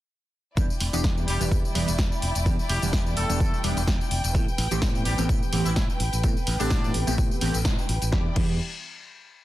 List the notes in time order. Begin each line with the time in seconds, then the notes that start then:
0.57 E2 E3 G3 B3 D4 E4 G4 D5 G5, kick, closed hi-hat, tambourine
0.70 muted fingered electric bass stroke, tambourine
0.80 E1, open hi-hat
0.93 E1 E3 G3 B3 D4 G4, closed hi-hat, tambourine
1.04 E2, kick, snare, closed hi-hat
1.18 tambourine
1.28 E1 G3 G4, open hi-hat
1.40 E1 E3 G3 B3 D4 G4, closed hi-hat, tambourine
1.51 E2, kick, closed hi-hat, tambourine
1.65 muted fingered electric bass stroke, tambourine
1.74 E1 E3 G3 B3 D4 G4, open hi-hat
1.88 E1, closed hi-hat, tambourine
1.99 E2, kick, snare, closed hi-hat, tambourine
2.12 tambourine
2.22 E1, open hi-hat
2.35 E1, closed hi-hat, tambourine
2.46 E2 E3 G3 B3 D4 G4, kick, closed hi-hat, tambourine
2.59 muted fingered electric bass stroke, tambourine
2.69 E1 G3 G4, open hi-hat
2.82 E1 E3 G3 B3 D4 G4, closed hi-hat, tambourine
2.93 E2, kick, snare, closed hi-hat, tambourine
3.06 tambourine
3.17 E1 A3 A4, open hi-hat
3.29 E1 E3 G3 B3 D4 G4, closed hi-hat, tambourine
3.40 E2, kick, closed hi-hat, tambourine
3.53 muted fingered electric bass stroke, tambourine
3.64 E1 E3 G3 B3 D4 G4, open hi-hat
3.77 E1, closed hi-hat, tambourine
3.88 E2, kick, snare, closed hi-hat, tambourine
4.01 tambourine
4.11 E1, open hi-hat
4.24 E1, closed hi-hat, tambourine
4.34 A2 E3 A3 B3 C4 G4 B4, kick, closed hi-hat, tambourine
4.48 muted fingered electric bass stroke, tambourine
4.58 A1, open hi-hat
4.71 A1 E3 A3 B3 C4 G4, closed hi-hat, tambourine
4.82 A2, kick, snare, closed hi-hat, tambourine
4.95 tambourine
5.05 A1 G3 G4, open hi-hat
5.18 A1 E3 A3 B3 C4 G4, closed hi-hat, tambourine
5.29 A2, kick, closed hi-hat, tambourine
5.42 muted fingered electric bass stroke, tambourine
5.53 A1 E3 A3 B3 C4 G4, open hi-hat
5.66 A1 E3 E4, closed hi-hat, tambourine
5.76 A2 E3 E4, kick, snare, closed hi-hat, tambourine
5.90 tambourine
6.00 A1, open hi-hat
6.13 A1, closed hi-hat, tambourine
6.23 A2 E3 A3 B3 C4 G4, kick, closed hi-hat, tambourine
6.37 muted fingered electric bass stroke, tambourine
6.47 A1, open hi-hat
6.60 A1 D3 E3 A3 B3 C4 D4 G4, closed hi-hat, tambourine
6.70 A2, kick, snare, closed hi-hat, tambourine
6.84 tambourine
6.94 A1, open hi-hat
7.07 A1 E3 A3 B3 C4 G4, closed hi-hat, tambourine
7.18 A2, kick, closed hi-hat, tambourine
7.31 muted fingered electric bass stroke, tambourine
7.41 A1 E3 A3 B3 C4 G4, open hi-hat
7.54 A1, closed hi-hat, tambourine
7.65 A2, kick, snare, closed hi-hat, tambourine
7.78 tambourine
7.89 A1, open hi-hat
8.02 A1, closed hi-hat, tambourine
8.11 E2 E3 G3 B3 D4 E4 G4 D5 G5, kick, snare
8.35 E2 E3 G3 B3 D4 G4, kick, crash